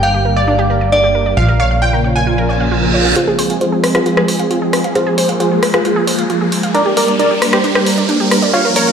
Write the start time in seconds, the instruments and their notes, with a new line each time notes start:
Already playing: analog synth bass G1
0.03 analog synth pad D3 G3 A#3 G4, synth arpeggio sound D4, synth bell F5, supersaw synth G5
0.14 synth arpeggio sound G4
0.25 analog synth pad D3 G3 A#3 G4, synth arpeggio sound A#4
0.36 synth arpeggio sound D5, supersaw synth D5
0.48 analog synth pad D3 G3 A#3 G4, synth arpeggio sound D4
0.59 synth arpeggio sound G4
0.70 analog synth pad D3 G3 A#3 G4, synth arpeggio sound A#4
0.81 synth arpeggio sound D5
0.92 analog synth pad D3 G3 A#3 G4, synth arpeggio sound D4, synth bell D5
1.04 synth arpeggio sound G4
1.15 analog synth pad D3 G3 A#3 G4, synth arpeggio sound A#4
1.26 analog synth pad D3 G3 A#3 G4, synth arpeggio sound D5
1.37 analog synth bass A#1, synth arpeggio sound F4, supersaw synth F5
1.48 analog synth pad C#3 F3 A#3 F4, synth arpeggio sound A#4
1.60 analog synth pad C#3 F3 A#3 F4, synth arpeggio sound C#5, supersaw synth F5
1.71 synth arpeggio sound F5
1.82 analog synth pad C#3 F3 A#3 F4, synth arpeggio sound F4, supersaw synth G5
1.93 synth arpeggio sound A#4
2.04 analog synth pad C#3 F3 A#3 F4, synth arpeggio sound C#5
2.16 synth arpeggio sound F5, supersaw synth G#5
2.27 analog synth pad C#3 F3 A#3 F4, synth arpeggio sound F4, reverse cymbal
2.38 synth arpeggio sound A#4
2.49 analog synth pad C#3 F3 A#3 F4, synth arpeggio sound C#5
2.60 synth arpeggio sound F5
2.72 analog synth pad C#3 F3 A#3 F4, synth arpeggio sound F4
2.83 synth arpeggio sound A#4
2.94 analog synth pad C#3 F3 A#3 F4, synth arpeggio sound C#5
3.05 analog synth pad C#3 F3 A#3 F4, synth arpeggio sound F5
3.16 synth arpeggio sound F4, supersaw synth G#4 C5, closed hi-hat, riser
3.27 analog synth pad F3 G#3 C4 G#4, synth arpeggio sound G#4
3.39 analog synth pad F3 G#3 C4 G#4, supersaw synth G#4 C5, synth arpeggio sound C5, open hi-hat
3.50 synth arpeggio sound F5, closed hi-hat
3.61 analog synth pad F3 G#3 C4 G#4, synth arpeggio sound F4, supersaw synth G#4 C5, closed hi-hat
3.72 synth arpeggio sound G#4
3.83 analog synth pad F3 G#3 C4 G#4, synth arpeggio sound C5, cross-stick, open hi-hat
3.95 supersaw synth F4 G#4, synth arpeggio sound F5, cross-stick, closed hi-hat
4.06 analog synth pad F3 G#3 C4 G#4, synth arpeggio sound F4, closed hi-hat
4.17 synth arpeggio sound G#4, cross-stick
4.28 analog synth pad F3 G#3 C4 G#4, synth arpeggio sound C5, open hi-hat
4.39 synth arpeggio sound F5, closed hi-hat
4.50 analog synth pad F3 G#3 C4 G#4, synth arpeggio sound F4, closed hi-hat
4.62 synth arpeggio sound G#4
4.73 analog synth pad F3 G#3 C4 G#4, synth arpeggio sound C5, cross-stick, open hi-hat
4.84 analog synth pad F3 G#3 C4 G#4, synth arpeggio sound F5, closed hi-hat
4.95 synth arpeggio sound F4, supersaw synth G#4 C5, closed hi-hat
5.06 analog synth pad F3 G#3 A#3 G#4, synth arpeggio sound G#4
5.18 analog synth pad F3 G#3 A#3 G#4, supersaw synth G#4 C5, synth arpeggio sound C5, open hi-hat
5.29 synth arpeggio sound F5, closed hi-hat
5.40 analog synth pad F3 G#3 A#3 G#4, synth arpeggio sound F4, supersaw synth G#4 C5, closed hi-hat
5.51 synth arpeggio sound G#4
5.63 analog synth pad F3 G#3 A#3 G#4, synth arpeggio sound C5, cross-stick, open hi-hat
5.74 supersaw synth F4 G#4, synth arpeggio sound F5, cross-stick, closed hi-hat
5.85 analog synth pad F3 G#3 A#3 G#4, synth arpeggio sound F4, closed hi-hat
5.96 synth arpeggio sound G#4
6.07 analog synth pad F3 G#3 A#3 G#4, synth arpeggio sound C5, open hi-hat
6.18 synth arpeggio sound F5, closed hi-hat
6.30 analog synth pad F3 G#3 A#3 G#4, synth arpeggio sound F4, closed hi-hat
6.41 synth arpeggio sound G#4
6.52 analog synth pad F3 G#3 A#3 G#4, synth arpeggio sound C5, open hi-hat
6.63 analog synth pad F3 G#3 A#3 G#4, synth arpeggio sound F5, closed hi-hat
6.74 synth arpeggio sound D4, supersaw synth A#4 D5, closed hi-hat
6.86 analog synth pad G3 A#3 D4 A#4, synth arpeggio sound G4
6.97 analog synth pad G3 A#3 D4 A#4, synth arpeggio sound A#4, supersaw synth A#4 D5, open hi-hat
7.08 synth arpeggio sound D5, closed hi-hat
7.19 analog synth pad G3 A#3 D4 A#4, synth arpeggio sound D4, supersaw synth A#4 D5, closed hi-hat
7.30 synth arpeggio sound G4
7.42 analog synth pad G3 A#3 D4 A#4, synth arpeggio sound A#4, cross-stick, open hi-hat
7.53 supersaw synth G4 C5, synth arpeggio sound D5, cross-stick, closed hi-hat
7.64 analog synth pad G3 A#3 D4 A#4, synth arpeggio sound D4, closed hi-hat
7.75 synth arpeggio sound G4, cross-stick
7.86 analog synth pad G3 A#3 D4 A#4, synth arpeggio sound A#4, open hi-hat
7.98 synth arpeggio sound D5, closed hi-hat
8.09 analog synth pad G3 A#3 D4 A#4, synth arpeggio sound D4, closed hi-hat
8.20 synth arpeggio sound G4
8.31 analog synth pad G3 A#3 D4 A#4, synth arpeggio sound A#4, cross-stick, open hi-hat
8.42 analog synth pad G3 A#3 D4 A#4, synth arpeggio sound D5, closed hi-hat
8.54 synth arpeggio sound F4, supersaw synth C#5 F5, closed hi-hat
8.65 analog synth pad F3 A#3 C#4 A#4, synth arpeggio sound A#4
8.76 analog synth pad F3 A#3 C#4 A#4, supersaw synth A#4 C#5, synth arpeggio sound C#5, open hi-hat
8.87 synth arpeggio sound F5, closed hi-hat